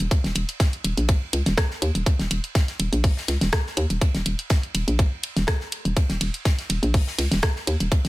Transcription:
0.00 closed hi-hat soft
0.00 ride soft
0.11 kick loud
0.11 closed hi-hat medium
0.11 ride medium
0.24 0.32 D#1 loud
0.24 snare soft
0.24 closed hi-hat soft
0.35 0.44 D#1 medium
0.35 closed hi-hat loud
0.35 ride medium
0.49 closed hi-hat soft
0.60 kick loud
0.60 snare loud
0.60 closed hi-hat medium
0.60 ride medium
0.73 closed hi-hat soft
0.84 0.93 D#1 medium
0.84 closed hi-hat loud
0.84 ride medium
0.97 1.14 A#1 medium
0.97 closed hi-hat soft
1.09 kick loud
1.09 closed hi-hat medium
1.09 ride loud
1.33 1.42 C#2 medium
1.33 closed hi-hat loud
1.33 ride medium
1.46 1.54 D#1 loud
1.46 snare soft
1.46 closed hi-hat soft
1.57 kick loud
1.57 cross-stick loud
1.57 snare loud
1.57 closed hi-hat medium
1.57 ride medium
1.71 snare medium
1.82 1.91 D#2 loud
1.82 closed hi-hat loud
1.82 ride medium
1.95 2.03 D#1 medium
1.95 closed hi-hat soft
2.06 kick loud
2.06 closed hi-hat medium
2.06 ride medium
2.19 2.27 D#1 loud
2.19 snare medium
2.19 closed hi-hat soft
2.31 2.40 D#1 medium
2.31 closed hi-hat medium
2.31 ride medium
2.44 closed hi-hat soft
2.55 kick loud
2.55 snare loud
2.55 closed hi-hat medium
2.55 ride medium
2.68 snare soft
2.68 closed hi-hat soft
2.79 2.88 D#1 medium
2.79 closed hi-hat loud
2.79 ride medium
2.93 3.09 A#1 medium
2.93 closed hi-hat soft
2.93 ride soft
3.04 kick loud
3.04 closed hi-hat medium
3.04 open hi-hat medium
3.17 snare medium
3.28 3.37 C#2 medium
3.28 snare soft
3.28 closed hi-hat loud
3.28 ride medium
3.41 3.49 D#1 loud
3.41 snare medium
3.41 closed hi-hat soft
3.52 kick loud
3.52 cross-stick loud
3.52 snare loud
3.52 closed hi-hat medium
3.52 ride medium
3.67 snare medium
3.77 3.86 D#2 loud
3.77 closed hi-hat loud
3.77 ride medium
3.90 3.98 D#1 medium
3.90 closed hi-hat soft
3.90 ride soft
4.01 kick loud
4.01 closed hi-hat medium
4.01 ride medium
4.14 4.22 D#1 loud
4.14 snare medium
4.14 closed hi-hat soft
4.26 4.35 D#1 medium
4.26 closed hi-hat loud
4.26 ride medium
4.39 closed hi-hat soft
4.50 kick loud
4.50 snare loud
4.50 closed hi-hat soft
4.50 ride medium
4.63 closed hi-hat soft
4.74 4.84 D#1 medium
4.74 closed hi-hat loud
4.74 ride medium
4.88 5.04 A#1 medium
4.88 closed hi-hat soft
4.99 kick loud
4.99 closed hi-hat medium
4.99 ride medium
5.23 closed hi-hat loud
5.23 ride medium
5.36 5.44 D#1 loud
5.36 snare soft
5.36 closed hi-hat soft
5.47 kick loud
5.47 cross-stick loud
5.47 snare loud
5.47 closed hi-hat medium
5.47 ride medium
5.60 snare medium
5.72 closed hi-hat loud
5.72 ride medium
5.85 5.93 D#1 medium
5.85 closed hi-hat soft
5.97 kick loud
5.97 closed hi-hat medium
5.97 ride loud
6.09 6.17 D#1 loud
6.09 snare medium
6.09 closed hi-hat soft
6.21 6.30 D#1 medium
6.21 closed hi-hat medium
6.21 ride medium
6.34 closed hi-hat soft
6.45 kick loud
6.45 snare loud
6.45 closed hi-hat medium
6.45 ride medium
6.59 snare soft
6.59 closed hi-hat soft
6.69 6.79 D#1 medium
6.69 closed hi-hat medium
6.69 ride medium
6.83 6.99 A#1 medium
6.83 closed hi-hat soft
6.83 ride soft
6.94 kick loud
6.94 closed hi-hat medium
6.94 open hi-hat medium
7.07 snare soft
7.18 7.27 C#2 medium
7.18 snare soft
7.18 closed hi-hat medium
7.18 ride medium
7.31 7.39 D#1 loud
7.31 snare medium
7.31 closed hi-hat soft
7.43 kick loud
7.43 cross-stick loud
7.43 snare loud
7.43 closed hi-hat medium
7.43 ride medium
7.56 snare medium
7.67 7.76 D#2 loud
7.67 closed hi-hat medium
7.67 ride medium
7.80 7.88 D#1 medium
7.80 closed hi-hat soft
7.80 ride soft
7.92 kick loud
7.92 closed hi-hat medium
7.92 ride loud
8.05 8.08 D#1 loud
8.05 snare medium
8.05 closed hi-hat soft

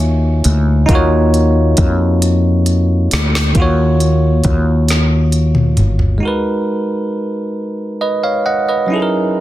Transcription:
0.00 0.41 D#2 medium
0.00 0.84 A#3 medium
0.00 0.83 D#4 medium
0.00 0.86 F4 medium
0.00 0.87 F#4 medium
0.00 0.91 C#5 medium
0.00 3.57 E5 medium
0.00 3.58 G#5 medium
0.44 0.85 D2 medium
0.44 closed hi-hat medium
0.86 1.74 D#2 loud
0.86 3.51 A#3 medium
0.86 3.50 D#4 medium
0.86 kick loud
0.86 closed hi-hat medium
0.90 3.52 F4 medium
0.90 3.54 F#4 medium
0.95 3.55 C#5 medium
1.34 closed hi-hat soft
1.77 3.08 F2 medium
1.77 kick medium
1.77 closed hi-hat medium
2.22 closed hi-hat medium
2.66 closed hi-hat soft
3.11 3.52 D2 medium
3.11 snare medium
3.11 closed hi-hat medium
3.35 snare medium
3.53 4.41 D#2 medium
3.53 6.17 D#3 medium
3.53 6.18 A#3 medium
3.53 kick loud
3.53 closed hi-hat medium
3.57 6.19 F4 medium
3.57 6.20 F#4 medium
3.62 6.21 C#5 medium
4.00 closed hi-hat medium
4.44 5.74 D#2 medium
4.44 kick medium
4.44 closed hi-hat soft
4.88 snare soft
4.88 closed hi-hat medium
5.32 closed hi-hat soft
5.55 mid tom medium
5.77 6.19 G1 medium
5.77 closed hi-hat soft
5.77 mid tom medium
5.99 floor tom medium
6.18 8.83 G#3 medium
6.18 8.84 D#4 soft
6.23 8.85 F#4 soft
6.23 7.98 A#4 medium
6.28 7.99 B4 medium
8.01 8.22 B4 soft
8.01 8.22 D#5 soft
8.23 8.44 C#5 soft
8.23 8.44 F5 soft
8.46 8.66 D#5 soft
8.46 8.66 F#5 medium
8.69 9.10 B4 soft
8.69 9.10 D#5 soft
8.86 9.40 F#3 soft
8.86 9.40 C#4 soft
8.86 9.40 D#4 soft
8.92 9.40 E4 medium
8.92 9.40 G#4 soft
8.92 8.99 A4 soft
9.02 9.40 A#4 medium

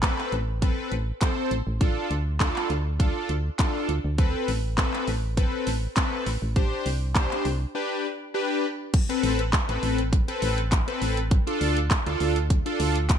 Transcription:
0.00 0.14 A1 medium
0.00 0.34 C4 loud
0.00 0.34 A4 medium
0.00 0.34 B4 loud
0.00 kick loud
0.00 clap loud
0.00 closed hi-hat medium
0.18 clap medium
0.32 0.74 A1 loud
0.32 closed hi-hat soft
0.62 0.94 C4 medium
0.62 0.94 A4 medium
0.62 0.94 B4 loud
0.62 kick loud
0.62 closed hi-hat medium
0.92 1.12 A1 medium
0.92 closed hi-hat medium
1.21 1.53 C4 loud
1.21 1.53 A4 medium
1.21 1.53 C5 loud
1.21 kick loud
1.21 clap loud
1.21 closed hi-hat medium
1.51 1.62 A1 medium
1.51 closed hi-hat medium
1.67 1.97 A1 medium
1.81 2.12 D4 loud
1.81 2.12 F4 medium
1.81 2.13 A4 loud
1.81 kick loud
1.81 closed hi-hat medium
2.10 2.52 D2 medium
2.10 closed hi-hat soft
2.40 2.72 D4 loud
2.40 2.72 F4 medium
2.40 2.72 A4 loud
2.40 kick loud
2.40 clap loud
2.40 closed hi-hat medium
2.56 clap medium
2.70 3.11 D2 loud
2.70 closed hi-hat medium
2.99 3.31 D4 medium
2.99 3.31 F4 medium
2.99 3.31 A4 loud
2.99 kick loud
2.99 closed hi-hat medium
3.29 3.50 D2 medium
3.29 closed hi-hat medium
3.59 3.91 D4 loud
3.59 3.91 F4 medium
3.59 3.91 A4 loud
3.59 kick loud
3.59 clap loud
3.59 closed hi-hat medium
3.89 4.00 D2 medium
3.89 closed hi-hat medium
4.04 4.35 D2 medium
4.18 4.50 C4 loud
4.18 4.50 A4 medium
4.18 4.50 B4 loud
4.18 kick loud
4.18 closed hi-hat medium
4.48 4.90 A1 medium
4.48 open hi-hat medium
4.78 5.09 C4 medium
4.78 5.10 A4 medium
4.78 5.10 B4 loud
4.78 kick loud
4.78 clap loud
4.78 closed hi-hat medium
4.94 clap medium
5.08 5.49 A1 loud
5.08 open hi-hat medium
5.37 5.69 C4 medium
5.37 5.69 A4 medium
5.37 5.69 B4 loud
5.37 kick loud
5.37 closed hi-hat medium
5.67 5.88 A1 medium
5.67 open hi-hat medium
5.96 6.28 C4 medium
5.96 6.28 A4 medium
5.96 6.29 B4 loud
5.96 kick loud
5.96 clap loud
5.96 closed hi-hat medium
6.26 6.37 A1 medium
6.26 open hi-hat medium
6.42 6.73 A1 medium
6.56 6.88 D4 loud
6.56 6.88 G4 medium
6.56 6.88 C5 loud
6.56 kick loud
6.56 closed hi-hat medium
6.86 7.27 C2 medium
6.86 open hi-hat medium
7.15 7.47 D4 loud
7.15 7.47 G4 medium
7.15 7.47 C5 loud
7.15 kick loud
7.15 clap loud
7.15 closed hi-hat medium
7.31 clap medium
7.45 7.66 C2 loud
7.45 open hi-hat medium
7.75 8.06 D4 medium
7.75 8.07 G4 medium
7.75 8.07 B4 loud
8.34 8.66 D4 loud
8.34 8.66 G4 medium
8.34 8.66 B4 loud
8.94 kick loud
8.94 closed hi-hat medium
8.94 crash loud
9.09 9.41 C4 medium
9.09 9.41 A4 medium
9.09 9.41 B4 loud
9.09 closed hi-hat medium
9.23 9.55 A1 medium
9.23 open hi-hat medium
9.39 closed hi-hat medium
9.53 kick loud
9.53 clap loud
9.53 closed hi-hat medium
9.69 9.79 A1 medium
9.69 10.00 C4 medium
9.69 10.00 A4 medium
9.69 10.00 B4 medium
9.69 closed hi-hat medium
9.83 10.24 A1 loud
9.83 open hi-hat medium
9.98 closed hi-hat medium
10.13 kick loud
10.13 closed hi-hat medium
10.28 10.60 C4 medium
10.28 10.60 A4 medium
10.28 10.60 B4 loud
10.28 closed hi-hat medium
10.42 10.84 A1 loud
10.42 open hi-hat medium
10.58 closed hi-hat medium
10.72 kick loud
10.72 clap loud
10.72 closed hi-hat medium
10.87 11.19 C4 medium
10.87 11.19 A4 medium
10.87 11.19 B4 loud
10.87 closed hi-hat medium
11.02 11.43 A1 medium
11.02 open hi-hat medium
11.17 closed hi-hat medium
11.31 kick loud
11.31 closed hi-hat medium
11.47 11.78 D4 loud
11.47 11.79 F4 medium
11.47 11.79 A4 loud
11.47 closed hi-hat medium
11.61 11.93 D2 medium
11.61 open hi-hat medium
11.77 closed hi-hat medium
11.91 kick loud
11.91 clap loud
11.91 closed hi-hat medium
12.06 12.16 D2 medium
12.06 12.38 D4 medium
12.06 12.38 F4 medium
12.06 12.38 A4 loud
12.06 closed hi-hat medium
12.20 12.62 D2 loud
12.20 open hi-hat medium
12.36 closed hi-hat medium
12.50 kick loud
12.50 closed hi-hat medium
12.66 12.97 D4 medium
12.66 12.97 F4 medium
12.66 12.98 A4 loud
12.66 closed hi-hat medium
12.80 13.19 D2 loud
12.80 open hi-hat medium
12.96 closed hi-hat medium
13.09 kick loud
13.09 clap loud
13.09 closed hi-hat medium

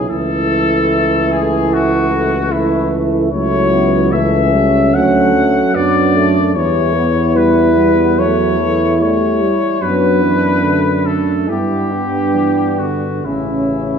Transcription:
0.00 0.10 B1 soft
0.09 3.29 C#2 soft
0.09 2.48 E3 medium
0.09 2.48 A3 medium
0.09 2.35 E4 medium
0.09 1.29 A4 medium
1.31 1.72 G#4 medium
1.73 2.53 F#4 medium
2.52 3.32 E3 medium
2.52 3.31 A3 medium
2.52 2.92 E4 medium
2.52 3.31 E4 medium
3.32 4.95 C#2 medium
3.32 4.14 F#3 medium
3.32 3.69 A3 medium
3.32 4.09 E4 medium
3.32 4.08 C#5 medium
3.73 4.13 B3 medium
4.11 4.55 E3 medium
4.11 4.92 A3 medium
4.11 5.74 C#4 medium
4.11 4.93 E5 medium
4.54 4.93 G3 medium
4.94 5.59 D2 medium
4.94 5.34 F#3 medium
4.94 5.73 A3 medium
4.94 5.74 F#5 medium
5.35 6.38 F#3 medium
5.74 6.57 F#2 medium
5.74 6.15 B3 medium
5.74 6.55 D4 medium
5.74 6.54 D5 medium
6.15 6.54 A3 medium
6.54 9.56 E2 medium
6.54 7.37 E3 medium
6.54 6.93 G3 medium
6.54 9.78 E4 medium
6.54 7.33 C#5 medium
6.95 8.19 B3 medium
7.36 7.77 G3 medium
7.36 8.19 B4 medium
7.78 8.20 G3 medium
8.18 8.58 F#3 medium
8.18 9.00 A3 medium
8.18 9.00 C#5 medium
8.59 9.03 E3 medium
9.00 9.66 G3 medium
9.00 9.43 A3 soft
9.00 9.81 C#5 medium
9.42 9.83 G3 soft
9.81 11.51 F#2 soft
9.81 10.23 F#3 soft
9.81 10.63 B3 soft
9.81 11.45 D4 medium
9.81 11.06 B4 medium
10.22 10.66 E3 soft
10.64 11.20 D3 soft
10.64 11.06 A3 soft
11.06 11.48 A3 soft
11.06 11.48 A4 medium
11.48 13.24 G2 soft
11.48 12.37 G3 soft
11.48 13.21 B3 soft
11.48 11.92 E4 soft
11.48 12.79 G4 medium
11.91 13.08 D4 soft
12.35 12.81 E3 soft
12.79 13.27 D3 soft
12.79 13.25 F#4 medium
13.25 13.99 A1 soft
13.25 13.99 C#3 soft
13.25 13.99 C#4 soft
13.25 13.99 E4 medium

